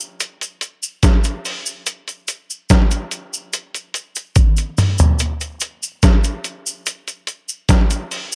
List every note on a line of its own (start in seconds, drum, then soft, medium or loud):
0.00 cabasa medium
0.20 closed hi-hat medium
0.20 cabasa medium
0.41 closed hi-hat medium
0.41 cabasa soft
0.61 closed hi-hat medium
0.61 cabasa soft
0.83 cabasa medium
1.03 kick loud
1.03 snare loud
1.03 closed hi-hat medium
1.03 cabasa medium
1.24 closed hi-hat medium
1.24 cabasa medium
1.45 open hi-hat medium
1.45 cabasa medium
1.66 cabasa medium
1.86 closed hi-hat medium
1.86 cabasa medium
2.08 closed hi-hat soft
2.08 cabasa soft
2.28 closed hi-hat medium
2.28 cabasa medium
2.50 cabasa medium
2.70 kick loud
2.70 snare loud
2.70 closed hi-hat medium
2.70 cabasa medium
2.91 closed hi-hat medium
2.91 cabasa medium
3.11 closed hi-hat medium
3.11 cabasa medium
3.34 cabasa medium
3.53 closed hi-hat loud
3.53 cabasa medium
3.75 closed hi-hat medium
3.75 cabasa soft
3.94 closed hi-hat medium
3.94 cabasa soft
4.15 closed hi-hat soft
4.15 cabasa medium
4.36 kick loud
4.36 closed hi-hat medium
4.36 high tom medium
4.36 cabasa medium
4.57 closed hi-hat medium
4.57 cabasa medium
4.78 mid tom medium
4.78 open hi-hat medium
4.78 cabasa medium
4.98 closed hi-hat soft
4.98 floor tom loud
4.98 cabasa medium
5.19 closed hi-hat loud
5.19 cabasa medium
5.41 closed hi-hat soft
5.41 cabasa soft
5.60 closed hi-hat medium
5.60 cabasa medium
5.83 cabasa medium
6.03 kick loud
6.03 snare loud
6.03 closed hi-hat loud
6.03 cabasa medium
6.24 closed hi-hat medium
6.24 cabasa medium
6.44 closed hi-hat medium
6.44 cabasa soft
6.66 cabasa medium
6.86 closed hi-hat medium
6.86 cabasa medium
7.08 closed hi-hat medium
7.08 cabasa soft
7.27 closed hi-hat medium
7.27 cabasa soft
7.49 cabasa medium
7.69 kick loud
7.69 snare loud
7.69 closed hi-hat loud
7.69 cabasa medium
7.90 closed hi-hat medium
7.90 cabasa medium
8.11 open hi-hat medium
8.11 cabasa soft